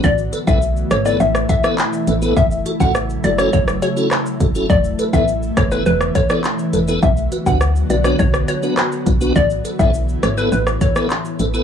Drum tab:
HH |--x---x---x---x-|--x---x---x---x-|--x---x---x---x-|--x---x---x---x-|
SH |xxxxxxxxxxxxxxxx|xxxxxxxxxxxxxxxx|xxxxxxxxxxxxxxxx|xxxxxxxxxxxxxxxx|
CP |------------x---|------------x---|------------x---|------------x---|
SD |------r--r-r----|----r--r-r--r---|------r--r-r----|----r--r-r--r---|
BD |o--o------o-----|o--o----o-----o-|o--o--o---o-----|o--o----o-----o-|

HH |--x---x---x---x-|
SH |xxxxxxxxxxxxxxxx|
CP |------------x---|
SD |------r--r-r----|
BD |o--o------o-----|